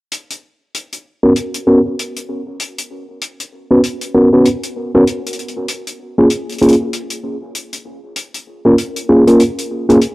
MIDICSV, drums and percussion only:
0, 0, Header, 1, 2, 480
1, 0, Start_track
1, 0, Tempo, 618557
1, 95, Time_signature, 4, 2, 24, 8
1, 7874, End_track
2, 0, Start_track
2, 0, Title_t, "Drums"
2, 90, Note_on_c, 9, 42, 83
2, 167, Note_off_c, 9, 42, 0
2, 235, Note_on_c, 9, 42, 63
2, 313, Note_off_c, 9, 42, 0
2, 578, Note_on_c, 9, 42, 81
2, 656, Note_off_c, 9, 42, 0
2, 718, Note_on_c, 9, 42, 58
2, 795, Note_off_c, 9, 42, 0
2, 1054, Note_on_c, 9, 42, 79
2, 1132, Note_off_c, 9, 42, 0
2, 1196, Note_on_c, 9, 42, 65
2, 1273, Note_off_c, 9, 42, 0
2, 1544, Note_on_c, 9, 42, 80
2, 1622, Note_off_c, 9, 42, 0
2, 1679, Note_on_c, 9, 42, 57
2, 1756, Note_off_c, 9, 42, 0
2, 2015, Note_on_c, 9, 42, 76
2, 2092, Note_off_c, 9, 42, 0
2, 2159, Note_on_c, 9, 42, 67
2, 2236, Note_off_c, 9, 42, 0
2, 2495, Note_on_c, 9, 42, 80
2, 2572, Note_off_c, 9, 42, 0
2, 2637, Note_on_c, 9, 42, 63
2, 2715, Note_off_c, 9, 42, 0
2, 2976, Note_on_c, 9, 42, 76
2, 3054, Note_off_c, 9, 42, 0
2, 3113, Note_on_c, 9, 42, 61
2, 3190, Note_off_c, 9, 42, 0
2, 3456, Note_on_c, 9, 42, 78
2, 3533, Note_off_c, 9, 42, 0
2, 3595, Note_on_c, 9, 42, 58
2, 3673, Note_off_c, 9, 42, 0
2, 3936, Note_on_c, 9, 42, 70
2, 4014, Note_off_c, 9, 42, 0
2, 4085, Note_on_c, 9, 42, 58
2, 4134, Note_off_c, 9, 42, 0
2, 4134, Note_on_c, 9, 42, 48
2, 4183, Note_off_c, 9, 42, 0
2, 4183, Note_on_c, 9, 42, 38
2, 4254, Note_off_c, 9, 42, 0
2, 4254, Note_on_c, 9, 42, 30
2, 4332, Note_off_c, 9, 42, 0
2, 4409, Note_on_c, 9, 42, 89
2, 4487, Note_off_c, 9, 42, 0
2, 4554, Note_on_c, 9, 42, 61
2, 4632, Note_off_c, 9, 42, 0
2, 4888, Note_on_c, 9, 42, 76
2, 4965, Note_off_c, 9, 42, 0
2, 5038, Note_on_c, 9, 42, 28
2, 5060, Note_off_c, 9, 42, 0
2, 5060, Note_on_c, 9, 42, 31
2, 5107, Note_off_c, 9, 42, 0
2, 5107, Note_on_c, 9, 42, 37
2, 5140, Note_off_c, 9, 42, 0
2, 5140, Note_on_c, 9, 42, 43
2, 5187, Note_off_c, 9, 42, 0
2, 5187, Note_on_c, 9, 42, 47
2, 5219, Note_off_c, 9, 42, 0
2, 5219, Note_on_c, 9, 42, 51
2, 5297, Note_off_c, 9, 42, 0
2, 5377, Note_on_c, 9, 42, 73
2, 5455, Note_off_c, 9, 42, 0
2, 5509, Note_on_c, 9, 42, 65
2, 5587, Note_off_c, 9, 42, 0
2, 5857, Note_on_c, 9, 42, 69
2, 5934, Note_off_c, 9, 42, 0
2, 5996, Note_on_c, 9, 42, 59
2, 6074, Note_off_c, 9, 42, 0
2, 6331, Note_on_c, 9, 42, 73
2, 6409, Note_off_c, 9, 42, 0
2, 6473, Note_on_c, 9, 42, 57
2, 6550, Note_off_c, 9, 42, 0
2, 6814, Note_on_c, 9, 42, 72
2, 6891, Note_off_c, 9, 42, 0
2, 6954, Note_on_c, 9, 42, 60
2, 7031, Note_off_c, 9, 42, 0
2, 7195, Note_on_c, 9, 42, 49
2, 7273, Note_off_c, 9, 42, 0
2, 7291, Note_on_c, 9, 42, 80
2, 7369, Note_off_c, 9, 42, 0
2, 7437, Note_on_c, 9, 42, 58
2, 7515, Note_off_c, 9, 42, 0
2, 7680, Note_on_c, 9, 42, 45
2, 7757, Note_off_c, 9, 42, 0
2, 7770, Note_on_c, 9, 42, 77
2, 7848, Note_off_c, 9, 42, 0
2, 7874, End_track
0, 0, End_of_file